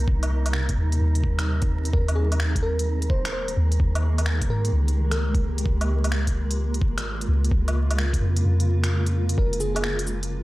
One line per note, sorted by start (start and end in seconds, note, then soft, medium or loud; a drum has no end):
0.00 1.89 C3 medium
0.00 1.89 G3 medium
0.00 1.90 D#4 medium
0.00 9.37 A#4 medium
0.07 0.76 C2 medium
0.07 1.91 C4 medium
0.07 kick loud
0.23 closed hi-hat soft
0.23 low woodblock medium
0.46 closed hi-hat medium
0.46 low woodblock medium
0.53 finger snap loud
0.69 kick medium
0.69 closed hi-hat soft
0.77 0.99 D#2 medium
0.92 closed hi-hat medium
1.00 1.92 D#2 medium
1.15 closed hi-hat soft
1.24 kick medium
1.39 finger snap loud
1.39 closed hi-hat soft
1.62 kick loud
1.62 closed hi-hat soft
1.85 closed hi-hat medium
1.93 3.11 D#2 loud
1.93 5.61 D#3 medium
1.93 9.34 G#3 medium
1.93 9.33 A#3 medium
1.93 3.77 G#4 medium
1.93 2.15 A#4 medium
1.93 kick loud
2.08 closed hi-hat soft
2.08 low woodblock medium
2.15 2.28 G#4 medium
2.32 closed hi-hat soft
2.32 low woodblock medium
2.40 finger snap loud
2.56 kick medium
2.56 closed hi-hat soft
2.63 2.88 A#4 medium
2.79 closed hi-hat medium
3.02 closed hi-hat soft
3.10 3.55 D#1 medium
3.10 3.31 C5 medium
3.10 kick loud
3.25 finger snap loud
3.25 closed hi-hat soft
3.32 3.58 C5 medium
3.48 closed hi-hat soft
3.57 3.78 D#2 medium
3.72 closed hi-hat medium
3.79 4.48 D#2 loud
3.79 5.63 G4 medium
3.79 kick loud
3.95 closed hi-hat soft
3.95 low woodblock medium
4.18 closed hi-hat medium
4.18 low woodblock medium
4.26 finger snap loud
4.42 kick medium
4.42 closed hi-hat soft
4.49 4.71 G#2 medium
4.49 4.74 A#4 medium
4.65 closed hi-hat medium
4.73 5.65 C#2 medium
4.88 closed hi-hat soft
5.11 5.42 A#4 medium
5.11 finger snap medium
5.11 closed hi-hat soft
5.34 kick loud
5.34 closed hi-hat soft
5.58 closed hi-hat medium
5.66 6.83 C#2 loud
5.66 9.34 C#3 medium
5.66 9.34 F4 medium
5.66 kick loud
5.81 closed hi-hat soft
5.81 low woodblock medium
6.04 closed hi-hat medium
6.04 low woodblock medium
6.12 finger snap loud
6.27 kick medium
6.27 closed hi-hat soft
6.51 closed hi-hat medium
6.74 closed hi-hat soft
6.81 7.27 G#1 medium
6.81 kick loud
6.98 finger snap medium
6.98 closed hi-hat soft
7.21 closed hi-hat soft
7.28 7.50 C#2 loud
7.44 closed hi-hat medium
7.51 8.20 C#2 loud
7.51 kick loud
7.68 closed hi-hat soft
7.68 low woodblock medium
7.91 closed hi-hat medium
7.91 low woodblock medium
7.98 finger snap loud
8.13 kick medium
8.13 closed hi-hat soft
8.21 8.43 F2 medium
8.37 closed hi-hat medium
8.45 9.37 F2 medium
8.60 closed hi-hat soft
8.84 finger snap loud
8.84 closed hi-hat medium
9.06 closed hi-hat soft
9.29 closed hi-hat medium
9.37 10.43 F1 loud
9.37 10.43 C3 medium
9.37 10.43 F3 medium
9.37 10.43 G#3 medium
9.37 10.43 F4 medium
9.37 10.43 A#4 medium
9.37 9.60 A#4 medium
9.37 kick loud
9.53 closed hi-hat soft
9.60 9.73 G#4 medium
9.60 cabasa medium
9.75 10.00 G#4 medium
9.75 closed hi-hat medium
9.75 low woodblock medium
9.84 finger snap loud
9.99 closed hi-hat soft
10.07 cabasa medium
10.23 closed hi-hat medium